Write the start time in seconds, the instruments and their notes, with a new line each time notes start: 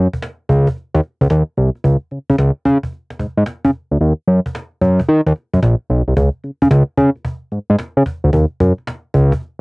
0.13 cajon bass
0.22 cajon slap
0.49 analog synth bass C#2, cajon bass
0.67 cajon bass
0.76 cajon slap
0.94 analog synth bass D#2, cajon slap
1.21 analog synth bass C#2, cajon bass
1.30 analog synth bass D#2, cajon slap
1.57 analog synth bass C2, cajon slap
1.75 cajon slap
1.84 analog synth bass C#2, cajon bass
2.11 analog synth bass C#3, cajon slap
2.30 analog synth bass C#3, cajon bass
2.38 analog synth bass C#2, cajon slap
2.65 analog synth bass C#3, cajon bass
2.83 cajon bass
2.92 cajon slap
3.10 cajon slap
3.20 analog synth bass G#2, cajon bass
3.37 analog synth bass G#2, cajon slap
3.46 cajon slap
3.65 analog synth bass C#3, cajon bass
3.74 cajon slap
3.92 analog synth bass D2, cajon slap
4.01 analog synth bass D#2, cajon slap
4.28 analog synth bass F#2, cajon slap
4.46 cajon bass
4.55 cajon slap
4.82 analog synth bass F#2, cajon bass
5.00 cajon bass
5.09 analog synth bass D#3
5.27 analog synth bass D#2, cajon slap
5.36 cajon slap
5.54 analog synth bass F#2, cajon bass
5.63 analog synth bass A#1, cajon slap
5.90 analog synth bass B1, cajon slap
6.08 analog synth bass C2, cajon slap
6.17 analog synth bass C#2, cajon bass
6.44 analog synth bass C#3, cajon slap
6.62 analog synth bass C#3, cajon bass
6.71 analog synth bass C#2, cajon slap
6.98 analog synth bass C#3, cajon bass
7.16 cajon slap
7.25 cajon bass
7.52 analog synth bass G#2, cajon slap
7.70 analog synth bass G#2, cajon slap
7.79 cajon slap
7.97 analog synth bass C#3
8.06 cajon bass
8.24 analog synth bass D2, cajon slap
8.33 analog synth bass D#2, cajon bass
8.60 analog synth bass F#2, cajon bass
8.78 cajon slap
8.87 cajon slap
9.14 analog synth bass C#2, cajon bass
9.32 cajon bass
9.41 cajon slap